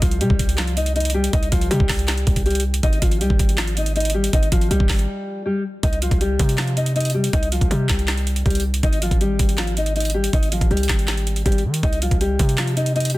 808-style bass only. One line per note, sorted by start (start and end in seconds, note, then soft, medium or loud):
0.02 0.22 C2 loud
0.21 0.30 C3 loud
0.30 1.29 C2 loud
1.33 1.51 C2 loud
1.52 1.70 C2 loud
1.71 1.79 C3 loud
1.80 2.25 C2 loud
2.27 2.81 C2 loud
2.83 3.01 G#1 loud
3.02 3.22 G#1 loud
3.21 3.30 C2 loud
3.30 3.39 G#1 loud
3.39 4.29 G#1 loud
4.33 4.51 G#1 loud
4.52 4.70 G#1 loud
4.71 4.80 C2 loud
4.80 4.89 G#1 loud
4.90 5.08 G#1 loud
5.83 6.10 C2 loud
6.11 6.38 C2 loud
6.40 7.30 C3 loud
7.33 7.60 C2 loud
7.61 7.70 C2 loud
7.71 7.89 C3 loud
7.90 8.44 C2 loud
8.46 8.82 C2 loud
8.83 9.10 G#1 loud
9.11 9.38 G#1 loud
9.39 10.29 G#1 loud
10.33 10.60 G#1 loud
10.61 10.70 G#1 loud
10.71 10.89 C2 loud
10.89 11.43 G#1 loud
11.46 11.66 G#1 loud
11.64 11.82 D#3 loud
11.83 12.10 C2 loud
12.11 12.38 C2 loud
12.39 13.18 C3 loud